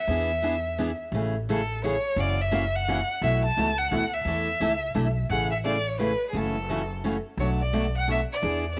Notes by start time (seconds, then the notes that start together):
Already playing: E5
0.08 E2 E3 B3 D4 G#4
0.42 E3 B3 D4 G#4
0.78 E3 B3 D4 G#4
1.12 A1 C#3 E3 A3 C#4 G#4
1.49 C#3 E3 A3 C#4 G#4 A4
1.84 C#3 E3 A3 C#4 G#4 C#5
2.16 F#1 C#3 E3 A#3 C#4 F#4 D5
2.41 E5
2.51 C#3 E3 A#3 C#4 F#4
2.76 F#5
2.88 C#3 E3 A#3 C#4 F#4
3.22 B1 B2 E3 A3 E4 F#4 E5
3.45 A5
3.57 C#2 B2 E3 A3 E4 F#4
3.78 F#5
3.91 D2 B2 E3 A3 E4 F#4
4.14 E5
4.25 E2 E3 A3 D4 E4 A4
4.60 C#2 E3 A3 D4 E4 A4
4.94 B1 E3 A3 D4 E4 A4
5.29 A1 C#3 E3 A3 C#4 G#4 F#5
5.51 E5
5.64 C#3 E3 A3 C#4 G#4 D5
5.88 C#5
5.99 C#3 E3 A3 C#4 G#4 B4
6.29 G#4
6.33 F#1 C#3 E3 A3 C#4 F#4 A4
6.69 C#3 E3 A3 C#4 F#4
7.04 C#3 E3 A3 C#4 F#4
7.37 B1 B2 F#3 A3 D4 F#4 C#5
7.61 D5
7.73 B2 F#3 A3 D4 F#4
7.97 F#5
8.08 B2 F#3 A3 D4 F#4 E5
8.32 D5
8.42 E2 E3 B3 D4 G#4
8.76 B3